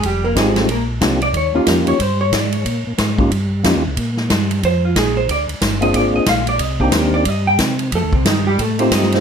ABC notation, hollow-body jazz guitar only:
X:1
M:4/4
L:1/8
Q:"Swing" 1/4=182
K:Bbmix
V:1 name="Hollow-body jazz guitar"
[G,G] [B,B] [A,A] [=A,=A] [B,B] z2 d | _d F B d c d =d _d- | _d4 z4 | z4 c F A c |
d z2 e d e f d | e G B d e g z2 | [=A,=A] [C,C] [E,E] [G,G] [A,A] [Cc] [Ee] [Cc] |]